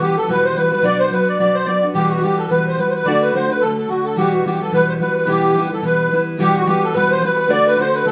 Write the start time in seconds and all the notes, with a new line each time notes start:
0.00 E3 G3 B3 F#4 G4
0.16 E3 G3 B3 F#4 A4
0.27 E2 B2 E3 G3 B3 F#4 B4
0.45 C5
0.54 E3 G3 B3 F#4 B4
0.70 E3 G3 B3 F#4 B4
0.82 B2 F#3 B3 D4 F#4 D5
0.99 C5
1.09 F#3 B3 D4 B4
1.13 F#4
1.28 D5
1.39 B2 F#3 B3 D4 F#4 D5
1.55 C5
1.65 F#3 B3 D4 F#4 D5
1.82 B3 D4 F#4
1.94 E2 B2 E3 G3 B3 F#4 G4
2.10 F#4
2.21 E3 G3 B3 F#4 G4
2.38 A4
2.47 E2 B2 E3 G3 B3 F#4 A4 B4
2.67 C5
2.77 E3 G3 B3 F#4 B4
2.89 C5
2.95 B4
3.05 D3 A3 D4 F#4 D5
3.22 B4
3.33 D3 A3 D4 F#4 C5
3.49 A3 D4 F#4 B4
3.61 D3 A3 D4 F#4 A4
3.78 A4
3.88 D3 A3 D4 F#4
4.05 A4
4.16 E2 B2 E3 G3 B3 F#4 G4
4.34 F#4
4.44 E3 G3 B3 F#4 G4
4.59 E3 G3 B3 F#4 A4
4.71 E2 B2 E3 G3 B3 F#4 B4
4.89 C5
4.98 E3 G3 B3 F#4 B4
5.18 B4
5.26 E2 B2 E3 G3 B3 E4 G4
5.54 E3 G3 B3 E4
5.66 E4 B4
5.71 E3 G3 B3 A4
5.82 E2 B2 E3 G3 B3 E4 B4
6.10 E3 G3 B3 E4
6.37 E2 B2 E3 G3 B3 F#4 G4
6.55 F#4
6.66 E3 G3 B3 F#4 G4
6.84 A4
6.94 E2 B2 E3 G3 B3 F#4 B4
7.10 C5
7.21 E3 G3 B3 F#4 B4
7.37 B4
7.48 D3 A3 D4 F#4 D5
7.53 D5
7.67 B4
7.76 D3 A3 D4 F#4 C5
7.81 C5
7.94 B4
8.05 D3 A3 D4 F#4 A4